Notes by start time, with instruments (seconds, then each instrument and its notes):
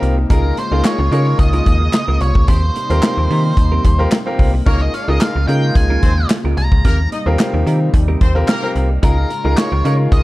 Already playing: analog synth pad C3 G3 A#3 D#4, grand piano C4 F4 G4 A#4
0.02 fm bass C2, closed hi-hat
0.18 muted clean electric guitar stroke
0.30 fm bass C#2, analog synth pad C#3 G#3 F4, clean electric guitar C#4 F4 A#4, grand piano D#4 F4 G#4 A#4, lead electric guitar A#4, kick, closed hi-hat
0.45 muted clean electric guitar stroke
0.57 lead electric guitar C5, muted clean electric guitar stroke, closed hi-hat
0.71 fm bass C#2, clean electric guitar C#4 F4 A#4, grand piano D#4 F4 G#4 A#4
0.84 lead electric guitar C#5, snare, clap, closed hi-hat
0.99 fm bass C#2, clean electric guitar C#4 F4 A#4
1.11 fm bass C#3, clean electric guitar C#4 F4 A#4, grand piano D#4 F4 G#4 A#4, lead electric guitar C#5, closed hi-hat
1.26 muted clean electric guitar stroke
1.39 fm bass C#2, lead electric guitar D#5, muted clean electric guitar stroke, kick, closed hi-hat
1.53 clean electric guitar C#4 F4 A#4, closed hi-hat
1.66 fm bass D#2, muted clean electric guitar stroke, kick, closed hi-hat
1.81 muted clean electric guitar stroke
1.93 muted clean electric guitar stroke, snare, clap, closed hi-hat
2.08 fm bass C#2, clean electric guitar C#4 F4 A#4
2.21 fm bass C2, lead electric guitar C#5, closed hi-hat
2.35 fm bass C#2, muted clean electric guitar stroke, kick
2.48 fm bass D#2, analog synth pad C3 G3 D#4, clean electric guitar C4 G4 A#4, lead electric guitar C5, kick, closed hi-hat
2.63 muted clean electric guitar stroke
2.76 muted clean electric guitar stroke, closed hi-hat
2.90 fm bass D#2, grand piano C4 F4 G4 A#4, clean electric guitar C4 G4 C5, closed hi-hat
3.02 snare, clap, closed hi-hat
3.17 fm bass D#2, clean electric guitar C4 G4 A#4
3.30 fm bass D#3, clean electric guitar C4 G4 A#4, open hi-hat
3.45 muted clean electric guitar stroke
3.57 fm bass D#2, muted clean electric guitar stroke, kick, closed hi-hat
3.72 clean electric guitar C4 G4 A#4
3.84 fm bass D#2, muted clean electric guitar stroke, kick, closed hi-hat
3.99 grand piano C4 F4 G4 A#4, muted clean electric guitar stroke
4.11 muted clean electric guitar stroke, snare, clap, closed hi-hat
4.26 grand piano C4 F4 G4 A#4, muted clean electric guitar stroke
4.39 fm bass C2, kick, open hi-hat
4.54 muted clean electric guitar stroke
4.66 fm bass C#2, analog synth pad C#3 G#3 F4, horn section A#3 A#4, clean electric guitar C#4 F4 A#4, grand piano D#4 F4 G#4 A#4, lead electric guitar C#5, kick, closed hi-hat
4.81 lead electric guitar D#5, muted clean electric guitar stroke
4.94 horn section C#4 C#5, lead electric guitar F5, muted clean electric guitar stroke, closed hi-hat
5.08 fm bass C#2, clean electric guitar C#4 F4 A#4, grand piano D#4 F4 G#4 A#4, lead electric guitar D#5
5.21 lead electric guitar F5, snare, clap, closed hi-hat
5.36 fm bass C#2, clean electric guitar C#4 F4 A#4
5.48 fm bass C#3, clean electric guitar C#4 F4 A#4, grand piano D#4 F4 G#4 A#4, lead electric guitar G5, closed hi-hat
5.63 muted clean electric guitar stroke
5.75 fm bass C#2, lead electric guitar G#5, muted clean electric guitar stroke, kick, closed hi-hat
5.90 clean electric guitar C#4 F4 A#4
6.03 fm bass D#2, horn section C4 C5, muted clean electric guitar stroke, kick, closed hi-hat
6.18 muted clean electric guitar stroke
6.30 muted clean electric guitar stroke, snare, clap, closed hi-hat
6.44 fm bass C#2, clean electric guitar C#4 F4 A#4
6.57 fm bass C2, lead electric guitar A#5, muted clean electric guitar stroke, closed hi-hat
6.72 fm bass C#2, muted clean electric guitar stroke, kick
6.84 fm bass D#2, analog synth pad C3 G3 D#4, horn section A#3 A#4, clean electric guitar C4 G4 A#4, kick, closed hi-hat
7.12 horn section D#4 D#5, muted clean electric guitar stroke, closed hi-hat
7.26 fm bass D#2, grand piano C4 F4 G4 A#4, clean electric guitar C4 G4 C5
7.39 snare, clap, closed hi-hat
7.54 fm bass D#2, clean electric guitar C4 G4 A#4
7.66 fm bass D#3, clean electric guitar C4 G4 A#4, closed hi-hat
7.93 fm bass D#2, muted clean electric guitar stroke, kick, closed hi-hat
8.08 clean electric guitar C4 G4 A#4
8.21 fm bass D#2, horn section C4 C5, kick, closed hi-hat
8.35 grand piano C4 F4 G4 A#4, muted clean electric guitar stroke
8.48 horn section A#3 A#4, muted clean electric guitar stroke, snare, clap, closed hi-hat
8.62 grand piano C4 F4 G4 A#4, muted clean electric guitar stroke
8.75 fm bass C2, closed hi-hat
8.90 muted clean electric guitar stroke
9.02 fm bass C#2, analog synth pad C#3 G#3 F4, clean electric guitar C#4 F4 A#4, grand piano D#4 F4 G#4 A#4, lead electric guitar A#4, kick, closed hi-hat
9.17 muted clean electric guitar stroke
9.30 muted clean electric guitar stroke, closed hi-hat
9.44 fm bass C#2, clean electric guitar C#4 F4 A#4, grand piano D#4 F4 G#4 A#4
9.57 lead electric guitar C#5, snare, clap, closed hi-hat
9.72 fm bass C#2, clean electric guitar C#4 F4 A#4
9.85 fm bass C#3, clean electric guitar C#4 F4 A#4, grand piano D#4 F4 G#4 A#4, lead electric guitar C#5, closed hi-hat
9.99 muted clean electric guitar stroke
10.12 fm bass C#2, lead electric guitar D#5, muted clean electric guitar stroke, kick, closed hi-hat